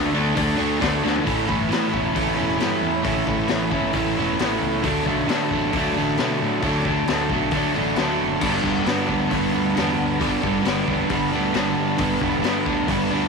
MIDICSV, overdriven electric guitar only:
0, 0, Header, 1, 2, 480
1, 0, Start_track
1, 0, Tempo, 446761
1, 1362, Time_signature, 4, 2, 24, 8
1, 14269, End_track
2, 0, Start_track
2, 0, Title_t, "Overdriven electric guitar"
2, 0, Program_c, 0, 29
2, 0, Note_on_c, 0, 50, 88
2, 0, Note_on_c, 0, 57, 101
2, 0, Note_on_c, 0, 62, 107
2, 130, Note_off_c, 0, 50, 0
2, 138, Note_off_c, 0, 57, 0
2, 143, Note_off_c, 0, 62, 0
2, 143, Note_on_c, 0, 50, 85
2, 151, Note_on_c, 0, 57, 107
2, 156, Note_on_c, 0, 62, 96
2, 366, Note_off_c, 0, 50, 0
2, 372, Note_off_c, 0, 57, 0
2, 379, Note_on_c, 0, 50, 85
2, 383, Note_off_c, 0, 62, 0
2, 385, Note_on_c, 0, 57, 99
2, 396, Note_on_c, 0, 62, 118
2, 595, Note_off_c, 0, 50, 0
2, 602, Note_off_c, 0, 57, 0
2, 608, Note_on_c, 0, 50, 84
2, 612, Note_off_c, 0, 62, 0
2, 615, Note_on_c, 0, 57, 100
2, 625, Note_on_c, 0, 62, 113
2, 845, Note_off_c, 0, 50, 0
2, 854, Note_off_c, 0, 57, 0
2, 858, Note_off_c, 0, 62, 0
2, 858, Note_on_c, 0, 50, 92
2, 866, Note_on_c, 0, 57, 91
2, 871, Note_on_c, 0, 62, 105
2, 1097, Note_off_c, 0, 50, 0
2, 1107, Note_off_c, 0, 57, 0
2, 1108, Note_off_c, 0, 62, 0
2, 1110, Note_on_c, 0, 50, 91
2, 1120, Note_on_c, 0, 57, 96
2, 1121, Note_on_c, 0, 62, 115
2, 1330, Note_on_c, 0, 45, 103
2, 1332, Note_off_c, 0, 50, 0
2, 1336, Note_on_c, 0, 52, 99
2, 1338, Note_off_c, 0, 57, 0
2, 1347, Note_off_c, 0, 62, 0
2, 1351, Note_on_c, 0, 57, 105
2, 1361, Note_on_c, 0, 61, 98
2, 1365, Note_on_c, 0, 64, 108
2, 1568, Note_off_c, 0, 64, 0
2, 1572, Note_on_c, 0, 64, 72
2, 1584, Note_off_c, 0, 61, 0
2, 1588, Note_on_c, 0, 61, 72
2, 1614, Note_off_c, 0, 57, 0
2, 1618, Note_on_c, 0, 57, 60
2, 1809, Note_off_c, 0, 52, 0
2, 1813, Note_on_c, 0, 52, 76
2, 1829, Note_off_c, 0, 57, 0
2, 1831, Note_off_c, 0, 61, 0
2, 1833, Note_on_c, 0, 57, 77
2, 1835, Note_on_c, 0, 61, 80
2, 1845, Note_off_c, 0, 64, 0
2, 1849, Note_on_c, 0, 64, 80
2, 2042, Note_off_c, 0, 64, 0
2, 2046, Note_on_c, 0, 64, 67
2, 2060, Note_off_c, 0, 61, 0
2, 2064, Note_on_c, 0, 61, 67
2, 2080, Note_off_c, 0, 57, 0
2, 2084, Note_on_c, 0, 57, 63
2, 2286, Note_off_c, 0, 45, 0
2, 2290, Note_on_c, 0, 45, 92
2, 2306, Note_off_c, 0, 52, 0
2, 2309, Note_off_c, 0, 61, 0
2, 2310, Note_on_c, 0, 52, 91
2, 2312, Note_off_c, 0, 57, 0
2, 2316, Note_on_c, 0, 57, 93
2, 2320, Note_off_c, 0, 64, 0
2, 2322, Note_on_c, 0, 61, 89
2, 2333, Note_on_c, 0, 64, 100
2, 2508, Note_off_c, 0, 64, 0
2, 2521, Note_on_c, 0, 64, 75
2, 2530, Note_off_c, 0, 61, 0
2, 2542, Note_on_c, 0, 61, 73
2, 2551, Note_off_c, 0, 57, 0
2, 2556, Note_on_c, 0, 57, 58
2, 2756, Note_off_c, 0, 52, 0
2, 2769, Note_on_c, 0, 52, 82
2, 2772, Note_off_c, 0, 57, 0
2, 2777, Note_on_c, 0, 57, 82
2, 2779, Note_off_c, 0, 61, 0
2, 2786, Note_off_c, 0, 45, 0
2, 2792, Note_on_c, 0, 61, 90
2, 2796, Note_off_c, 0, 64, 0
2, 2808, Note_on_c, 0, 64, 94
2, 3243, Note_on_c, 0, 45, 95
2, 3247, Note_off_c, 0, 52, 0
2, 3260, Note_on_c, 0, 52, 115
2, 3261, Note_off_c, 0, 61, 0
2, 3264, Note_off_c, 0, 57, 0
2, 3268, Note_on_c, 0, 57, 96
2, 3273, Note_off_c, 0, 64, 0
2, 3274, Note_on_c, 0, 61, 111
2, 3286, Note_on_c, 0, 64, 124
2, 3494, Note_off_c, 0, 64, 0
2, 3507, Note_on_c, 0, 64, 69
2, 3510, Note_off_c, 0, 61, 0
2, 3523, Note_on_c, 0, 61, 69
2, 3540, Note_off_c, 0, 57, 0
2, 3545, Note_on_c, 0, 57, 59
2, 3721, Note_off_c, 0, 52, 0
2, 3734, Note_on_c, 0, 52, 71
2, 3743, Note_off_c, 0, 45, 0
2, 3752, Note_off_c, 0, 61, 0
2, 3754, Note_off_c, 0, 57, 0
2, 3759, Note_on_c, 0, 57, 80
2, 3765, Note_on_c, 0, 61, 84
2, 3770, Note_off_c, 0, 64, 0
2, 3782, Note_on_c, 0, 64, 77
2, 3970, Note_off_c, 0, 64, 0
2, 3983, Note_on_c, 0, 64, 77
2, 3992, Note_off_c, 0, 61, 0
2, 4005, Note_on_c, 0, 61, 72
2, 4012, Note_off_c, 0, 57, 0
2, 4016, Note_on_c, 0, 57, 55
2, 4211, Note_off_c, 0, 52, 0
2, 4219, Note_on_c, 0, 45, 92
2, 4224, Note_on_c, 0, 52, 95
2, 4230, Note_off_c, 0, 57, 0
2, 4231, Note_off_c, 0, 61, 0
2, 4234, Note_on_c, 0, 57, 88
2, 4238, Note_off_c, 0, 64, 0
2, 4244, Note_on_c, 0, 61, 92
2, 4251, Note_on_c, 0, 64, 98
2, 4460, Note_off_c, 0, 64, 0
2, 4473, Note_on_c, 0, 64, 72
2, 4480, Note_off_c, 0, 61, 0
2, 4493, Note_on_c, 0, 61, 68
2, 4500, Note_off_c, 0, 57, 0
2, 4504, Note_on_c, 0, 57, 66
2, 4698, Note_off_c, 0, 52, 0
2, 4711, Note_on_c, 0, 52, 74
2, 4712, Note_off_c, 0, 45, 0
2, 4723, Note_off_c, 0, 57, 0
2, 4725, Note_off_c, 0, 61, 0
2, 4727, Note_on_c, 0, 57, 92
2, 4737, Note_on_c, 0, 61, 86
2, 4738, Note_off_c, 0, 64, 0
2, 4750, Note_on_c, 0, 64, 92
2, 5179, Note_off_c, 0, 52, 0
2, 5183, Note_on_c, 0, 50, 94
2, 5192, Note_off_c, 0, 57, 0
2, 5196, Note_on_c, 0, 54, 92
2, 5197, Note_off_c, 0, 61, 0
2, 5204, Note_off_c, 0, 64, 0
2, 5210, Note_on_c, 0, 57, 120
2, 5218, Note_on_c, 0, 62, 123
2, 5429, Note_off_c, 0, 62, 0
2, 5433, Note_on_c, 0, 62, 75
2, 5448, Note_off_c, 0, 57, 0
2, 5452, Note_on_c, 0, 57, 69
2, 5463, Note_off_c, 0, 54, 0
2, 5468, Note_on_c, 0, 54, 56
2, 5664, Note_off_c, 0, 50, 0
2, 5668, Note_on_c, 0, 50, 78
2, 5678, Note_off_c, 0, 54, 0
2, 5682, Note_on_c, 0, 54, 77
2, 5686, Note_off_c, 0, 57, 0
2, 5690, Note_on_c, 0, 57, 87
2, 5703, Note_off_c, 0, 62, 0
2, 5707, Note_on_c, 0, 62, 88
2, 5921, Note_off_c, 0, 62, 0
2, 5925, Note_on_c, 0, 62, 80
2, 5939, Note_off_c, 0, 57, 0
2, 5944, Note_on_c, 0, 57, 62
2, 5965, Note_off_c, 0, 54, 0
2, 5969, Note_on_c, 0, 54, 58
2, 6156, Note_off_c, 0, 50, 0
2, 6158, Note_off_c, 0, 54, 0
2, 6160, Note_on_c, 0, 50, 89
2, 6171, Note_on_c, 0, 54, 83
2, 6175, Note_off_c, 0, 57, 0
2, 6188, Note_on_c, 0, 57, 98
2, 6202, Note_off_c, 0, 62, 0
2, 6207, Note_on_c, 0, 62, 100
2, 6401, Note_off_c, 0, 62, 0
2, 6405, Note_on_c, 0, 62, 77
2, 6414, Note_off_c, 0, 57, 0
2, 6427, Note_on_c, 0, 57, 73
2, 6432, Note_off_c, 0, 54, 0
2, 6445, Note_on_c, 0, 54, 64
2, 6631, Note_off_c, 0, 50, 0
2, 6641, Note_off_c, 0, 54, 0
2, 6644, Note_on_c, 0, 50, 75
2, 6654, Note_on_c, 0, 54, 82
2, 6658, Note_off_c, 0, 57, 0
2, 6671, Note_on_c, 0, 57, 87
2, 6676, Note_off_c, 0, 62, 0
2, 6680, Note_on_c, 0, 62, 85
2, 7105, Note_off_c, 0, 50, 0
2, 7118, Note_on_c, 0, 50, 98
2, 7121, Note_off_c, 0, 54, 0
2, 7122, Note_off_c, 0, 57, 0
2, 7134, Note_on_c, 0, 54, 101
2, 7135, Note_on_c, 0, 57, 107
2, 7153, Note_off_c, 0, 62, 0
2, 7157, Note_on_c, 0, 62, 109
2, 7364, Note_off_c, 0, 62, 0
2, 7365, Note_off_c, 0, 57, 0
2, 7368, Note_on_c, 0, 62, 81
2, 7378, Note_on_c, 0, 57, 68
2, 7391, Note_off_c, 0, 54, 0
2, 7404, Note_on_c, 0, 54, 64
2, 7602, Note_off_c, 0, 50, 0
2, 7612, Note_off_c, 0, 54, 0
2, 7613, Note_on_c, 0, 50, 81
2, 7624, Note_off_c, 0, 57, 0
2, 7625, Note_on_c, 0, 54, 89
2, 7637, Note_on_c, 0, 57, 87
2, 7644, Note_off_c, 0, 62, 0
2, 7648, Note_on_c, 0, 62, 80
2, 7830, Note_off_c, 0, 62, 0
2, 7835, Note_on_c, 0, 62, 68
2, 7847, Note_off_c, 0, 57, 0
2, 7860, Note_on_c, 0, 57, 66
2, 7861, Note_off_c, 0, 54, 0
2, 7874, Note_on_c, 0, 54, 65
2, 8069, Note_off_c, 0, 50, 0
2, 8082, Note_on_c, 0, 50, 82
2, 8087, Note_off_c, 0, 54, 0
2, 8093, Note_off_c, 0, 57, 0
2, 8100, Note_on_c, 0, 54, 88
2, 8106, Note_on_c, 0, 57, 99
2, 8117, Note_off_c, 0, 62, 0
2, 8121, Note_on_c, 0, 62, 94
2, 8316, Note_off_c, 0, 62, 0
2, 8320, Note_on_c, 0, 62, 73
2, 8324, Note_off_c, 0, 57, 0
2, 8337, Note_on_c, 0, 57, 65
2, 8348, Note_off_c, 0, 54, 0
2, 8361, Note_on_c, 0, 54, 67
2, 8555, Note_off_c, 0, 50, 0
2, 8568, Note_on_c, 0, 50, 86
2, 8574, Note_off_c, 0, 54, 0
2, 8587, Note_on_c, 0, 54, 88
2, 8588, Note_off_c, 0, 57, 0
2, 8601, Note_on_c, 0, 57, 81
2, 8602, Note_off_c, 0, 62, 0
2, 8607, Note_on_c, 0, 62, 91
2, 9031, Note_on_c, 0, 43, 98
2, 9033, Note_off_c, 0, 50, 0
2, 9043, Note_off_c, 0, 54, 0
2, 9045, Note_on_c, 0, 50, 104
2, 9049, Note_off_c, 0, 57, 0
2, 9053, Note_on_c, 0, 55, 91
2, 9059, Note_on_c, 0, 59, 107
2, 9061, Note_off_c, 0, 62, 0
2, 9065, Note_on_c, 0, 62, 109
2, 9264, Note_off_c, 0, 62, 0
2, 9269, Note_on_c, 0, 62, 70
2, 9290, Note_off_c, 0, 59, 0
2, 9295, Note_on_c, 0, 59, 70
2, 9303, Note_off_c, 0, 55, 0
2, 9307, Note_on_c, 0, 55, 57
2, 9494, Note_off_c, 0, 50, 0
2, 9506, Note_on_c, 0, 50, 76
2, 9511, Note_off_c, 0, 55, 0
2, 9515, Note_on_c, 0, 55, 87
2, 9523, Note_off_c, 0, 59, 0
2, 9527, Note_on_c, 0, 59, 87
2, 9535, Note_off_c, 0, 62, 0
2, 9539, Note_on_c, 0, 62, 82
2, 9742, Note_off_c, 0, 62, 0
2, 9747, Note_on_c, 0, 62, 75
2, 9766, Note_off_c, 0, 59, 0
2, 9770, Note_on_c, 0, 59, 65
2, 9787, Note_off_c, 0, 55, 0
2, 9791, Note_on_c, 0, 55, 66
2, 9982, Note_off_c, 0, 43, 0
2, 9986, Note_on_c, 0, 43, 89
2, 9991, Note_off_c, 0, 50, 0
2, 10004, Note_on_c, 0, 50, 92
2, 10014, Note_off_c, 0, 55, 0
2, 10019, Note_on_c, 0, 55, 95
2, 10021, Note_off_c, 0, 59, 0
2, 10025, Note_on_c, 0, 59, 88
2, 10026, Note_off_c, 0, 62, 0
2, 10030, Note_on_c, 0, 62, 98
2, 10224, Note_off_c, 0, 62, 0
2, 10228, Note_on_c, 0, 62, 72
2, 10249, Note_off_c, 0, 59, 0
2, 10253, Note_on_c, 0, 59, 64
2, 10269, Note_off_c, 0, 55, 0
2, 10273, Note_on_c, 0, 55, 62
2, 10460, Note_off_c, 0, 50, 0
2, 10473, Note_on_c, 0, 50, 78
2, 10485, Note_off_c, 0, 55, 0
2, 10489, Note_on_c, 0, 55, 76
2, 10494, Note_off_c, 0, 59, 0
2, 10498, Note_on_c, 0, 59, 81
2, 10504, Note_off_c, 0, 62, 0
2, 10508, Note_on_c, 0, 62, 88
2, 10941, Note_off_c, 0, 43, 0
2, 10945, Note_off_c, 0, 50, 0
2, 10945, Note_on_c, 0, 43, 101
2, 10958, Note_on_c, 0, 50, 101
2, 10965, Note_off_c, 0, 55, 0
2, 10969, Note_on_c, 0, 55, 111
2, 10972, Note_off_c, 0, 59, 0
2, 10976, Note_on_c, 0, 59, 110
2, 10984, Note_off_c, 0, 62, 0
2, 10988, Note_on_c, 0, 62, 108
2, 11190, Note_off_c, 0, 62, 0
2, 11194, Note_on_c, 0, 62, 79
2, 11209, Note_off_c, 0, 59, 0
2, 11213, Note_on_c, 0, 59, 61
2, 11227, Note_off_c, 0, 55, 0
2, 11231, Note_on_c, 0, 55, 66
2, 11405, Note_off_c, 0, 50, 0
2, 11418, Note_on_c, 0, 50, 81
2, 11436, Note_off_c, 0, 55, 0
2, 11439, Note_off_c, 0, 59, 0
2, 11440, Note_on_c, 0, 55, 82
2, 11443, Note_on_c, 0, 59, 80
2, 11458, Note_off_c, 0, 62, 0
2, 11463, Note_on_c, 0, 62, 88
2, 11674, Note_off_c, 0, 62, 0
2, 11678, Note_on_c, 0, 62, 71
2, 11707, Note_off_c, 0, 59, 0
2, 11711, Note_on_c, 0, 59, 63
2, 11716, Note_off_c, 0, 55, 0
2, 11720, Note_on_c, 0, 55, 62
2, 11894, Note_off_c, 0, 43, 0
2, 11896, Note_off_c, 0, 50, 0
2, 11898, Note_on_c, 0, 43, 80
2, 11908, Note_on_c, 0, 50, 89
2, 11919, Note_off_c, 0, 55, 0
2, 11924, Note_on_c, 0, 55, 101
2, 11927, Note_off_c, 0, 59, 0
2, 11931, Note_on_c, 0, 59, 92
2, 11935, Note_off_c, 0, 62, 0
2, 11939, Note_on_c, 0, 62, 90
2, 12155, Note_off_c, 0, 62, 0
2, 12159, Note_on_c, 0, 62, 74
2, 12175, Note_off_c, 0, 59, 0
2, 12179, Note_on_c, 0, 59, 75
2, 12187, Note_off_c, 0, 55, 0
2, 12192, Note_on_c, 0, 55, 64
2, 12373, Note_off_c, 0, 50, 0
2, 12385, Note_on_c, 0, 50, 84
2, 12394, Note_off_c, 0, 55, 0
2, 12399, Note_on_c, 0, 55, 88
2, 12410, Note_off_c, 0, 59, 0
2, 12415, Note_on_c, 0, 59, 82
2, 12420, Note_off_c, 0, 62, 0
2, 12425, Note_on_c, 0, 62, 95
2, 12853, Note_off_c, 0, 43, 0
2, 12855, Note_off_c, 0, 50, 0
2, 12857, Note_on_c, 0, 43, 101
2, 12867, Note_on_c, 0, 50, 103
2, 12873, Note_off_c, 0, 55, 0
2, 12877, Note_on_c, 0, 55, 95
2, 12884, Note_off_c, 0, 59, 0
2, 12889, Note_on_c, 0, 59, 107
2, 12895, Note_off_c, 0, 62, 0
2, 12899, Note_on_c, 0, 62, 104
2, 13113, Note_off_c, 0, 62, 0
2, 13117, Note_on_c, 0, 62, 65
2, 13131, Note_off_c, 0, 59, 0
2, 13135, Note_on_c, 0, 59, 72
2, 13149, Note_off_c, 0, 55, 0
2, 13153, Note_on_c, 0, 55, 63
2, 13334, Note_off_c, 0, 50, 0
2, 13347, Note_on_c, 0, 50, 85
2, 13366, Note_off_c, 0, 55, 0
2, 13370, Note_on_c, 0, 55, 75
2, 13375, Note_off_c, 0, 59, 0
2, 13379, Note_off_c, 0, 62, 0
2, 13380, Note_on_c, 0, 59, 92
2, 13384, Note_on_c, 0, 62, 90
2, 13597, Note_off_c, 0, 62, 0
2, 13602, Note_on_c, 0, 62, 77
2, 13613, Note_off_c, 0, 59, 0
2, 13617, Note_on_c, 0, 59, 67
2, 13627, Note_off_c, 0, 55, 0
2, 13631, Note_on_c, 0, 55, 65
2, 13827, Note_off_c, 0, 43, 0
2, 13827, Note_off_c, 0, 50, 0
2, 13831, Note_on_c, 0, 43, 94
2, 13835, Note_off_c, 0, 55, 0
2, 13840, Note_on_c, 0, 50, 92
2, 13847, Note_off_c, 0, 59, 0
2, 13848, Note_on_c, 0, 55, 85
2, 13854, Note_off_c, 0, 62, 0
2, 13860, Note_on_c, 0, 59, 106
2, 13867, Note_on_c, 0, 62, 94
2, 14071, Note_off_c, 0, 62, 0
2, 14084, Note_on_c, 0, 62, 85
2, 14093, Note_off_c, 0, 59, 0
2, 14106, Note_on_c, 0, 59, 72
2, 14113, Note_off_c, 0, 55, 0
2, 14126, Note_on_c, 0, 55, 65
2, 14269, Note_off_c, 0, 43, 0
2, 14269, Note_off_c, 0, 50, 0
2, 14269, Note_off_c, 0, 55, 0
2, 14269, Note_off_c, 0, 59, 0
2, 14269, Note_off_c, 0, 62, 0
2, 14269, End_track
0, 0, End_of_file